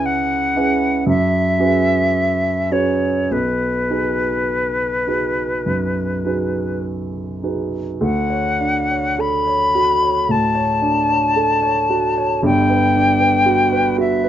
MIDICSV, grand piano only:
0, 0, Header, 1, 2, 480
1, 0, Start_track
1, 0, Key_signature, 5, "major"
1, 0, Tempo, 1013514
1, 508, Tempo, 1081081
1, 988, Tempo, 1176471
1, 1463, Time_signature, 4, 2, 24, 8
1, 3383, Key_signature, 2, "major"
1, 3868, Tempo, 1079137
1, 5308, Tempo, 1034483
1, 6161, End_track
2, 0, Start_track
2, 0, Title_t, "Grand piano"
2, 0, Program_c, 0, 0
2, 0, Control_c, 0, 64, 127
2, 0, Note_on_c, 0, 37, 57
2, 0, Note_on_c, 0, 61, 42
2, 0, Note_on_c, 0, 64, 38
2, 0, Note_on_c, 0, 68, 37
2, 0, Note_on_c, 0, 71, 42
2, 246, Note_off_c, 0, 61, 0
2, 248, Note_off_c, 0, 64, 0
2, 248, Note_off_c, 0, 68, 0
2, 250, Note_off_c, 0, 71, 0
2, 264, Note_on_c, 0, 61, 41
2, 267, Note_on_c, 0, 64, 38
2, 269, Note_on_c, 0, 71, 43
2, 270, Note_on_c, 0, 68, 41
2, 489, Note_off_c, 0, 61, 0
2, 490, Note_off_c, 0, 64, 0
2, 491, Note_off_c, 0, 68, 0
2, 491, Note_off_c, 0, 71, 0
2, 504, Note_on_c, 0, 42, 52
2, 517, Control_c, 0, 64, 0
2, 519, Note_off_c, 0, 37, 0
2, 589, Control_c, 0, 64, 127
2, 734, Note_off_c, 0, 42, 0
2, 738, Note_on_c, 0, 61, 37
2, 740, Note_on_c, 0, 66, 38
2, 743, Note_on_c, 0, 68, 37
2, 744, Note_on_c, 0, 71, 42
2, 1203, Note_off_c, 0, 61, 0
2, 1204, Note_off_c, 0, 66, 0
2, 1205, Note_off_c, 0, 68, 0
2, 1206, Note_off_c, 0, 71, 0
2, 1214, Note_on_c, 0, 61, 34
2, 1217, Note_on_c, 0, 66, 32
2, 1218, Note_on_c, 0, 68, 36
2, 1218, Note_on_c, 0, 71, 36
2, 1443, Note_off_c, 0, 61, 0
2, 1445, Note_off_c, 0, 66, 0
2, 1445, Note_off_c, 0, 68, 0
2, 1445, Note_off_c, 0, 71, 0
2, 1460, Note_on_c, 0, 35, 45
2, 1471, Control_c, 0, 64, 0
2, 1558, Control_c, 0, 64, 127
2, 1697, Note_off_c, 0, 35, 0
2, 1700, Note_on_c, 0, 63, 30
2, 1702, Note_on_c, 0, 66, 30
2, 1705, Note_on_c, 0, 68, 30
2, 1705, Note_on_c, 0, 71, 31
2, 2165, Note_off_c, 0, 63, 0
2, 2166, Note_off_c, 0, 66, 0
2, 2167, Note_off_c, 0, 68, 0
2, 2167, Note_off_c, 0, 71, 0
2, 2178, Note_on_c, 0, 63, 28
2, 2181, Note_on_c, 0, 66, 27
2, 2182, Note_on_c, 0, 68, 28
2, 2183, Note_on_c, 0, 71, 33
2, 2406, Note_off_c, 0, 63, 0
2, 2407, Note_off_c, 0, 66, 0
2, 2407, Note_off_c, 0, 68, 0
2, 2408, Note_off_c, 0, 71, 0
2, 2419, Note_on_c, 0, 42, 34
2, 2656, Note_off_c, 0, 42, 0
2, 2658, Note_on_c, 0, 63, 26
2, 2661, Note_on_c, 0, 66, 26
2, 2664, Note_on_c, 0, 68, 28
2, 2665, Note_on_c, 0, 71, 30
2, 3125, Note_off_c, 0, 63, 0
2, 3127, Note_off_c, 0, 66, 0
2, 3128, Note_off_c, 0, 68, 0
2, 3129, Note_off_c, 0, 71, 0
2, 3140, Note_on_c, 0, 63, 28
2, 3143, Note_on_c, 0, 66, 28
2, 3144, Note_on_c, 0, 68, 28
2, 3145, Note_on_c, 0, 71, 31
2, 3364, Note_off_c, 0, 63, 0
2, 3365, Note_off_c, 0, 66, 0
2, 3365, Note_off_c, 0, 68, 0
2, 3366, Note_off_c, 0, 71, 0
2, 3376, Note_on_c, 0, 38, 50
2, 3388, Control_c, 0, 64, 0
2, 3468, Control_c, 0, 64, 127
2, 3496, Note_on_c, 0, 73, 39
2, 3618, Note_on_c, 0, 62, 40
2, 3695, Note_off_c, 0, 73, 0
2, 3738, Note_on_c, 0, 73, 43
2, 3816, Note_off_c, 0, 62, 0
2, 3856, Note_on_c, 0, 69, 43
2, 3938, Note_off_c, 0, 73, 0
2, 3983, Note_on_c, 0, 73, 46
2, 4062, Note_off_c, 0, 69, 0
2, 4107, Note_on_c, 0, 66, 45
2, 4184, Note_off_c, 0, 73, 0
2, 4229, Note_on_c, 0, 73, 44
2, 4304, Note_off_c, 0, 66, 0
2, 4335, Note_off_c, 0, 38, 0
2, 4346, Note_on_c, 0, 45, 43
2, 4424, Note_off_c, 0, 73, 0
2, 4463, Note_on_c, 0, 73, 44
2, 4541, Note_off_c, 0, 45, 0
2, 4581, Note_on_c, 0, 62, 42
2, 4658, Note_off_c, 0, 73, 0
2, 4703, Note_on_c, 0, 73, 47
2, 4777, Note_off_c, 0, 62, 0
2, 4824, Note_on_c, 0, 69, 45
2, 4898, Note_off_c, 0, 73, 0
2, 4942, Note_on_c, 0, 73, 49
2, 5018, Note_off_c, 0, 69, 0
2, 5063, Note_on_c, 0, 66, 44
2, 5137, Note_off_c, 0, 73, 0
2, 5187, Note_on_c, 0, 73, 51
2, 5255, Note_off_c, 0, 66, 0
2, 5297, Note_on_c, 0, 31, 56
2, 5300, Note_on_c, 0, 43, 62
2, 5305, Note_off_c, 0, 73, 0
2, 5312, Control_c, 0, 64, 0
2, 5384, Control_c, 0, 64, 127
2, 5421, Note_on_c, 0, 71, 45
2, 5542, Note_on_c, 0, 62, 45
2, 5615, Note_off_c, 0, 71, 0
2, 5656, Note_on_c, 0, 71, 48
2, 5735, Note_off_c, 0, 62, 0
2, 5776, Note_on_c, 0, 66, 57
2, 5852, Note_off_c, 0, 71, 0
2, 5899, Note_on_c, 0, 71, 58
2, 5972, Note_off_c, 0, 66, 0
2, 6016, Note_on_c, 0, 66, 51
2, 6094, Note_off_c, 0, 71, 0
2, 6136, Note_on_c, 0, 71, 55
2, 6161, Note_off_c, 0, 31, 0
2, 6161, Note_off_c, 0, 43, 0
2, 6161, Note_off_c, 0, 66, 0
2, 6161, Note_off_c, 0, 71, 0
2, 6161, End_track
0, 0, End_of_file